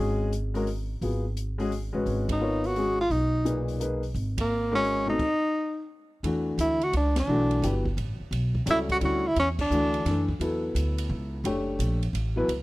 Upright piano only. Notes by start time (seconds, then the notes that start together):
Already playing: G#3 C#4 F#4 G#4
0.54 G#3 C#4 F#4 A#4
1.01 F#3 B3 F4 G#4
1.58 G#3 C#4 F#4 G#4
1.93 G#3 C#4 F#4 B4
2.40 B3 F4 A#4 C#5
2.76 G#3 C#4 F#4 G#4
3.45 A#2 D#4 G#4 B4
3.80 A#3 D#4 G#4 B4
4.72 G#3 C#4 F#4 A#4
5.06 B2 A3 C4 D#4 A4
6.24 E3 A3 D4 F#4
7.28 E3 A3 D4 F#4
7.63 F#3 B3 E4 G4
8.66 G3 C#4 F#4 A4
9.00 D3 G3 C#4 E4
9.71 E3 A3 D4 F#4
10.05 E3 A3 D4 A4
10.40 F#3 B3 E4 A4
11.44 A3 D4 G4 C#5
12.36 F#3 B3 E4 B4